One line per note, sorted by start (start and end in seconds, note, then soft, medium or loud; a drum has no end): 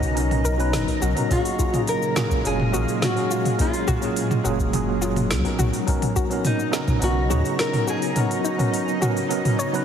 0.00 0.75 B1 loud
0.00 1.26 C#3 medium
0.00 0.12 F#3 medium
0.00 0.12 B3 medium
0.00 0.12 C#4 medium
0.00 0.13 D#4 medium
0.00 1.26 D#4 medium
0.00 0.15 F#4 medium
0.00 0.13 A#4 loud
0.00 1.26 A#5 medium
0.00 kick loud
0.00 open hi-hat soft
0.00 cabasa soft
0.14 0.41 F#3 medium
0.14 0.41 B3 medium
0.14 0.41 C#4 medium
0.14 0.42 D#4 medium
0.14 0.42 A#4 loud
0.14 open hi-hat medium
0.14 cabasa soft
0.31 mid tom medium
0.31 open hi-hat soft
0.45 0.60 A#4 medium
0.45 kick medium
0.45 cabasa medium
0.57 0.98 F#3 loud
0.57 0.98 B3 medium
0.57 0.98 C#4 medium
0.57 0.99 D#4 medium
0.57 0.99 B4 loud
0.57 open hi-hat soft
0.57 cabasa soft
0.73 0.85 F#1 medium
0.73 snare medium
0.73 mid tom medium
0.73 open hi-hat medium
0.73 cabasa soft
0.88 kick medium
0.88 open hi-hat soft
1.00 1.14 B1 medium
1.00 1.12 F#3 medium
1.00 1.12 B3 medium
1.00 1.13 C#4 medium
1.00 1.13 D#4 medium
1.00 1.17 F#4 medium
1.00 1.13 A#4 medium
1.00 cabasa medium
1.15 1.26 F#3 medium
1.15 1.27 B3 medium
1.15 1.27 C#4 medium
1.15 1.28 D#4 medium
1.15 1.28 A#4 medium
1.15 mid tom medium
1.15 open hi-hat soft
1.15 cabasa soft
1.29 5.55 A#2 medium
1.29 1.69 F#3 medium
1.29 5.56 G#3 medium
1.29 1.70 A#3 medium
1.29 1.70 C#4 medium
1.29 1.74 F#4 medium
1.29 1.71 G#4 loud
1.29 1.70 F5 medium
1.29 3.57 F5 medium
1.29 kick loud
1.29 mid tom medium
1.29 open hi-hat medium
1.29 cabasa soft
1.45 open hi-hat soft
1.45 cabasa soft
1.59 1.75 F4 medium
1.59 kick loud
1.59 cabasa medium
1.72 2.12 F#3 medium
1.72 2.13 A#3 medium
1.72 2.13 C#4 medium
1.72 1.88 F4 medium
1.72 2.13 F4 medium
1.72 2.14 G#4 medium
1.72 mid tom medium
1.72 open hi-hat soft
1.72 cabasa soft
1.88 2.46 A#4 loud
1.88 open hi-hat medium
1.88 cabasa soft
2.02 cabasa soft
2.15 2.41 F#3 loud
2.15 2.41 A#3 medium
2.15 2.42 C#4 medium
2.15 2.42 F4 medium
2.15 2.43 F#4 loud
2.15 2.42 G#4 loud
2.15 snare medium
2.15 mid tom medium
2.15 cabasa medium
2.31 kick loud
2.31 cabasa soft
2.44 2.75 F#1 loud
2.44 2.70 F#3 medium
2.44 2.70 A#3 medium
2.44 2.70 C#4 medium
2.44 2.71 F4 medium
2.44 3.04 G#4 loud
2.44 2.71 G#4 loud
2.44 open hi-hat medium
2.44 cabasa soft
2.60 mid tom medium
2.73 2.85 A#1 loud
2.73 3.13 F#3 medium
2.73 3.13 A#3 medium
2.73 3.13 C#4 medium
2.73 3.14 F4 medium
2.73 2.99 F#4 medium
2.73 3.14 G#4 loud
2.73 cabasa medium
2.88 open hi-hat soft
2.88 cabasa soft
3.02 3.61 F#4 medium
3.02 snare medium
3.02 mid tom medium
3.02 open hi-hat medium
3.02 cabasa soft
3.15 3.55 F#3 medium
3.15 3.56 A#3 medium
3.15 3.56 C#4 medium
3.15 3.57 G#4 loud
3.15 3.56 F5 medium
3.15 open hi-hat soft
3.31 3.46 F4 medium
3.31 cabasa medium
3.45 mid tom medium
3.45 open hi-hat soft
3.45 cabasa soft
3.58 3.98 F#3 medium
3.58 5.57 F#3 loud
3.58 3.98 A#3 medium
3.58 3.99 C#4 medium
3.58 3.99 F4 medium
3.58 4.42 F4 medium
3.58 4.00 G#4 loud
3.58 kick loud
3.58 open hi-hat medium
3.58 cabasa soft
3.73 open hi-hat soft
3.73 cabasa soft
3.88 4.15 F#4 loud
3.88 kick loud
3.88 mid tom medium
3.88 cabasa medium
4.01 4.41 F#3 medium
4.01 4.41 A#3 medium
4.01 4.42 C#4 medium
4.01 4.42 F4 medium
4.01 4.42 G#4 medium
4.01 open hi-hat soft
4.01 cabasa soft
4.17 open hi-hat medium
4.17 cabasa soft
4.31 mid tom medium
4.31 cabasa soft
4.44 5.32 F#1 loud
4.44 4.69 F#3 loud
4.44 4.70 A#3 medium
4.44 4.70 C#4 medium
4.44 4.70 F4 medium
4.44 4.70 F#4 medium
4.44 4.71 G#4 loud
4.44 cabasa medium
4.59 kick loud
4.59 cabasa soft
4.73 4.98 F#3 medium
4.73 4.99 A#3 medium
4.73 4.99 C#4 medium
4.73 4.99 F4 medium
4.73 5.00 G#4 loud
4.73 mid tom medium
4.73 open hi-hat medium
4.73 cabasa soft
5.01 5.41 F#3 medium
5.01 5.42 A#3 medium
5.01 5.42 C#4 medium
5.01 5.17 F4 medium
5.01 5.42 F4 medium
5.01 5.43 G#4 loud
5.01 cabasa medium
5.16 mid tom medium
5.16 open hi-hat soft
5.16 cabasa soft
5.31 5.42 C#2 medium
5.31 snare medium
5.31 open hi-hat medium
5.31 cabasa soft
5.44 5.84 F#3 medium
5.44 5.84 B3 medium
5.44 5.84 C#4 medium
5.44 5.85 D#4 medium
5.44 5.85 A#4 medium
5.44 kick medium
5.44 open hi-hat soft
5.58 5.71 B1 medium
5.58 9.85 C#3 medium
5.58 9.85 D#4 medium
5.58 5.86 F#4 medium
5.58 9.85 A#5 medium
5.58 mid tom medium
5.58 cabasa medium
5.73 open hi-hat soft
5.73 cabasa soft
5.86 6.27 F#3 loud
5.86 6.27 B3 medium
5.86 6.27 C#4 medium
5.86 6.28 D#4 medium
5.86 6.28 A#4 loud
5.86 kick loud
5.86 open hi-hat medium
5.86 cabasa soft
6.02 mid tom medium
6.02 open hi-hat soft
6.02 cabasa soft
6.16 6.42 F#4 medium
6.16 kick loud
6.16 cabasa medium
6.30 6.69 F#3 medium
6.30 6.70 B3 medium
6.30 6.70 C#4 medium
6.30 6.71 D#4 medium
6.30 6.71 A#4 medium
6.30 open hi-hat soft
6.30 cabasa soft
6.45 6.99 D#4 medium
6.45 mid tom medium
6.45 open hi-hat medium
6.45 cabasa soft
6.59 cabasa soft
6.72 6.98 F#3 loud
6.72 6.98 B3 medium
6.72 6.98 C#4 medium
6.72 6.89 D#4 medium
6.72 6.99 D#4 medium
6.72 6.99 A#4 loud
6.72 snare medium
6.72 cabasa medium
6.87 kick loud
6.87 mid tom medium
6.87 cabasa soft
7.00 7.31 B1 loud
7.00 7.26 F#3 loud
7.00 7.26 B3 medium
7.00 7.27 C#4 medium
7.00 7.27 D#4 medium
7.00 7.56 F#4 loud
7.00 7.28 A#4 loud
7.00 open hi-hat medium
7.00 cabasa soft
7.29 7.42 D#2 medium
7.29 7.69 F#3 medium
7.29 7.70 B3 medium
7.29 7.70 C#4 medium
7.29 7.70 D#4 medium
7.29 7.57 F#4 loud
7.29 7.71 G#4 loud
7.29 mid tom medium
7.29 cabasa medium
7.45 open hi-hat soft
7.45 cabasa soft
7.59 7.89 A#4 loud
7.59 snare medium
7.59 open hi-hat medium
7.59 cabasa soft
7.71 8.12 F#3 medium
7.71 8.12 B3 medium
7.71 8.13 C#4 medium
7.71 8.13 D#4 medium
7.71 8.13 A#4 medium
7.71 mid tom medium
7.71 open hi-hat soft
7.87 8.13 F#4 medium
7.87 8.18 G#4 loud
7.87 cabasa medium
8.02 open hi-hat soft
8.02 cabasa soft
8.14 8.55 F#3 medium
8.14 8.55 B3 medium
8.14 8.55 C#4 medium
8.14 8.56 D#4 medium
8.14 8.56 A#4 loud
8.14 mid tom medium
8.14 open hi-hat medium
8.14 cabasa soft
8.19 9.85 F#4 loud
8.31 open hi-hat soft
8.31 cabasa soft
8.44 8.60 D#4 medium
8.44 cabasa medium
8.57 8.97 F#3 medium
8.57 8.98 B3 medium
8.57 8.98 C#4 medium
8.57 8.99 D#4 medium
8.57 8.99 A#4 medium
8.57 mid tom medium
8.57 open hi-hat soft
8.57 cabasa soft
8.74 open hi-hat medium
8.74 cabasa soft
8.88 cabasa soft
9.00 9.26 F#3 loud
9.00 9.27 B3 medium
9.00 9.27 C#4 medium
9.00 9.27 D#4 medium
9.00 9.29 F#4 loud
9.00 9.28 A#4 loud
9.00 mid tom medium
9.00 cabasa medium
9.17 open hi-hat soft
9.17 cabasa soft
9.29 9.55 F#3 medium
9.29 9.55 B3 medium
9.29 9.56 C#4 medium
9.29 9.56 D#4 medium
9.29 9.56 A#4 loud
9.29 open hi-hat medium
9.29 cabasa soft
9.45 mid tom medium
9.45 open hi-hat soft
9.45 cabasa soft
9.59 9.75 C#5 medium
9.59 cabasa medium
9.73 9.85 F#3 loud
9.73 9.85 B3 loud
9.73 9.85 C#4 medium
9.73 9.85 D#4 loud
9.73 9.85 B4 loud
9.73 open hi-hat soft
9.73 cabasa soft